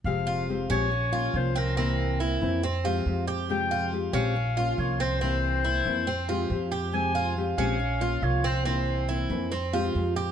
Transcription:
<<
  \new Staff \with { instrumentName = "Clarinet" } { \time 4/4 \key f \minor \tempo 4 = 139 f''4 r8 des''4. c''8 bes'8~ | bes'4. r2 r8 | g''4 r8 f''4. des''8 c''8~ | c''2.~ c''8 r8 |
aes''4 r8 f''4. des''8 c''8~ | c''4. r2 r8 | }
  \new Staff \with { instrumentName = "Cuban tres" } { \time 4/4 \key f \minor r8 f'4 des'4 f'4 c'8 | c'4 e'4 c'8 f'4 g'8~ | g'8 f'4 des'4 f'4 c'8 | c'4 e'4 c'8 f'4 g'8~ |
g'8 f'4 des'4 f'4 c'8 | c'4 e'4 c'8 f'4 g'8 | }
  \new Staff \with { instrumentName = "Nylon-string guitar" } { \time 4/4 \key f \minor <c f aes c' g'>4 <f aes c' g'>8 <f aes c' g'>8 r8 <bes des' f'>8 <f bes des' f'>4 | <c e bes c' e'>4 <e bes c' e'>8 <e bes c' e'>8 r8 <f aes c' g'>8 <f aes c' g'>4 | <c f aes c' g'>4 <f aes c' g'>8 <f aes c' g'>8 r8 <bes des' f'>8 <f bes des' f'>4 | <c e bes c' e'>4 <e bes c' e'>8 <e bes c' e'>8 r8 <f aes c' g'>8 <f aes c' g'>4 |
<c f aes c'>4 <f aes c' g'>8 <f aes c' g'>8 r8 <bes des' f'>8 <f bes des' f'>4 | <c e bes c' e'>4 <e bes c' e'>8 <e bes c' e'>8 r8 <f aes c' g'>8 <f aes c' g'>4 | }
  \new Staff \with { instrumentName = "Upright bass" } { \clef bass \time 4/4 \key f \minor f,,4. bes,,4. c,4~ | c,4. f,4. f,4~ | f,4. bes,,4. c,4~ | c,4. f,4. f,4~ |
f,4. bes,,4. c,4~ | c,4. f,4. f,4 | }
>>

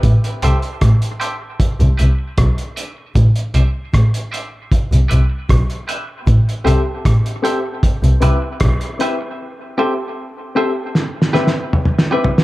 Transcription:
<<
  \new Staff \with { instrumentName = "Clean electric guitar" } { \time 4/4 \key a \minor \tempo 4 = 77 r8 <g' c'' e''>8 r8 <g' c'' e''>8 r8 <g' b' e''>8 r8 <g' b' e''>8 | r8 <g' c'' e''>8 r8 <g' c'' e''>8 r8 <g' b' e''>8 r8 <g' b' e''>8 | r8 <g' c'' e''>8 r8 <g' c'' e''>8 r8 <g' b' e''>8 r8 <g' b' e''>8 | r8 <g' c'' e''>8 r8 <g' c'' e''>8 r8 <g' b' e''>8 r8 <g' b' e''>8 | }
  \new Staff \with { instrumentName = "Upright piano" } { \time 4/4 \key a \minor r8 <c' g' a'>16 r8. <c' g' a'>16 r8 <e' b'>16 <c' e' b'>16 r8. <c' e' b'>16 r16 | r8 <c' g' a'>16 r8. <c' g' a'>16 r8. <c' e' b'>16 r8. <c' e' b'>16 r16 | r8 <c' g' a'>16 r8. <c' g' a'>16 r8 <e' b'>16 <c' e' b'>16 r8. <c' e' b'>16 r16 | r8 <c' g' a'>16 r8. <c' g' a'>16 r8. <c' e' b'>16 r8. <c' e' b'>16 r16 | }
  \new Staff \with { instrumentName = "Double bass" } { \clef bass \time 4/4 \key a \minor a,,8 c,8 a,,8 r8. c,16 c,8 b,,8. r16 | a,,8 c,8 a,,8 r8. c,16 c,8 b,,8. r16 | a,,8 c,8 a,,8 r8. c,16 c,8 b,,8. r16 | r1 | }
  \new DrumStaff \with { instrumentName = "Drums" } \drummode { \time 4/4 <hh bd>16 hh16 hh16 hh16 <hh bd ss>16 hh16 hh8 <hh bd>16 hh16 hh8 <hh bd ss>16 hh16 hh8 | <hh bd>16 hh16 hh8 <hh bd ss>16 hh16 hh8 <hh bd>16 hh16 hh8 <hh bd ss>16 hh16 hh8 | <hh bd>16 hh16 hh8 <hh bd ss>16 hh16 hh8 <hh bd>16 hh16 hh8 <hh bd ss>16 hh16 hh8 | r4 r4 \tuplet 3/2 { sn16 r16 sn16 sn16 sn16 r16 toml16 toml16 sn16 r16 tomfh16 sn16 } | }
>>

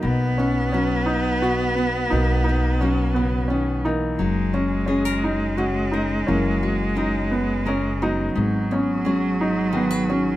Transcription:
<<
  \new Staff \with { instrumentName = "Nylon-string guitar" } { \time 6/8 \key b \major \tempo 4. = 58 << { r8 dis'8 fis'4 dis'8 fis'8 | r8 dis'8 fis'2 | r8 fis'8 gis'16 ais'8. cis'8 ais'8 | r8 fis'8 ais'4 ais'8 ais'8 |
r8 b8 fis'4 gis'16 b'16 fis'8 | } \\ { <b, fis>4 fis4 b,4 | b,4 fis8 cis8 dis8 e8 | fis4 cis'4 cis4 | fis4 cis'4 cis4 |
gis,4 gis4 dis4 | } >> }
  \new Staff \with { instrumentName = "Upright piano" } { \time 6/8 \key b \major dis'8 cis'8 cis'8 dis'8 fis'8 b8 | dis'8 dis'8 cis'8 b8 cis'8 dis'8~ | dis'8 cis'8 cis'8 dis'8 fis'8 dis'8 | cis'4 dis'8 b8 cis'8 dis'8~ |
dis'8 cis'8 cis'8 dis'8 b8 cis'8 | }
  \new Staff \with { instrumentName = "Upright piano" } { \time 6/8 \key b \major <fis ais>4 r2 | <fis ais>4. r4 ais8~ | ais4 r2 | <e ais>4. r4 <fis b>8~ |
<fis b>4 r2 | }
  \new Staff \with { instrumentName = "Cello" } { \clef bass \time 6/8 \key b \major b2.~ | b2~ b8 r8 | gis2.~ | gis2. |
fis2. | }
  \new Staff \with { instrumentName = "Upright bass" } { \clef bass \time 6/8 \key b \major b,,2. | b,,2. | fis,,2. | fis,,2. |
gis,,2. | }
>>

